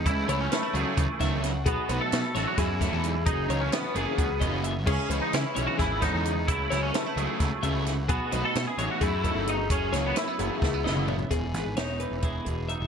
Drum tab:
CC |--------------|--------------|--------------|x-------------|
HH |x-x-x-x-x-x-x-|x-x-x-x-x-x-x-|x-x-x-x-x-x-x-|--x-x-x-x-x-x-|
SD |----o-----o-o-|----o-o-o-o---|----o---------|----o---o-o---|
T2 |--------------|--------------|--------------|--------------|
FT |--------------|--------------|--------------|--------------|
BD |o-------o-o---|o-------o-o---|o-------o-o---|o-------o-o---|

CC |--------------|--------------|--------------|--------------|
HH |x-x-x-x-x-x-x-|x-x-x-x-x-x-x-|x-x-x-x-------|x-x-x-x-x-x-x-|
SD |--o-o---o---o-|----o---------|--o-o---o-o---|--o-o---------|
T2 |--------------|--------------|-----------o--|--------------|
FT |--------------|--------------|------------oo|--------------|
BD |o-------o-o---|o-------o-o---|o-------o-----|o-------o-o---|